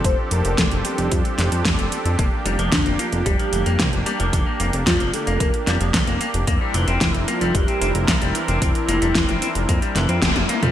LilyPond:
<<
  \new Staff \with { instrumentName = "Soft synth lead" } { \time 4/4 \key bes \lydian \tempo 4 = 112 c''8 bes'8 a'8 g'4. r4 | r4 d'8 f'8 g'4. r8 | r4 f'8 a'8 bes'4. r8 | r4 e'8 f'8 g'4 r8 e'8~ |
e'2. r4 | }
  \new Staff \with { instrumentName = "Analog synth pad" } { \time 4/4 \key bes \lydian << { <f c' d' a'>1 | bes1~ | bes1 | <c' d' bes'>1~ |
<c' d' bes'>1 | } \\ { g'1~ | g'1~ | g'1 | e'1~ |
e'1 | } >> }
  \new Staff \with { instrumentName = "Clean electric guitar" } { \time 4/4 \key bes \lydian r1 | bes16 r16 g16 f16 d16 bes16 bes16 r16 g16 f16 d16 bes16 bes16 r16 g16 f16 | d16 bes16 bes16 r16 g16 f16 d16 bes16 bes16 r16 g16 f16 d16 bes16 bes16 r16 | bes16 g16 e16 c'16 c'16 r16 bes16 g16 e16 c'16 c'16 r16 bes16 g16 e16 c'16 |
c'16 r16 bes16 g16 e16 c'16 c'16 r16 bes16 g16 e16 c'16 c'16 r16 bes16 g16 | }
  \new Staff \with { instrumentName = "Analog synth bass" } { \clef bass \time 4/4 \key bes \lydian f,,16 r16 f,,16 f,,16 f,,16 f,,16 r16 f,,16 f,16 r16 f,,16 f,16 f,,16 f,,16 r16 f,16 | f,,16 r16 f,,16 f,,16 f,,16 f,,16 r16 f,,16 f,,16 r16 f,,16 f,,16 c,16 f,,16 r16 f,,16 | f,,16 r16 f,,16 f,,16 f,,16 f,,16 r16 f,,16 f,,16 r16 f,,16 f,,16 c,16 f,,16 r16 f,,16 | f,,16 r16 f,,16 f,,16 f,,16 f,,16 r16 f,,16 f,,16 r16 f,,16 f,,16 c,16 f,,16 r16 f,,16 |
f,,16 r16 f,,16 f,,16 f,,16 f,,16 r16 f,,16 f,16 r16 f,,16 f,16 f,,16 f,,16 r16 f,16 | }
  \new DrumStaff \with { instrumentName = "Drums" } \drummode { \time 4/4 <hh bd>8 hh16 hh16 <hh bd sn>16 hh16 hh16 hh16 <hh bd>16 hh16 <hh sn>16 hh16 <hh bd sn>16 hh16 hh16 hh16 | <hh bd>8 hh16 hh16 <hh bd sn>16 hh16 hh16 hh16 <hh bd>16 hh16 hh16 hh16 <hh bd sn>16 hh16 hh16 hh16 | <hh bd>8 hh16 hh16 <hh bd sn>16 hh16 hh16 hh16 <hh bd>16 hh16 <hh sn>16 hh16 <hh bd sn>16 hh16 hh16 hh16 | <hh bd>8 hh16 hh16 <hh bd sn>16 hh16 hh16 hh16 <hh bd>16 hh16 hh16 hh16 <hh bd sn>16 hh16 hh16 hh16 |
<hh bd>16 hh16 hh16 hh16 <hh bd sn>16 hh16 hh16 hh16 <hh bd>16 hh16 <hh sn>16 hh16 <hh bd sn tommh>16 <hh tommh>16 hh16 <hh toml>16 | }
>>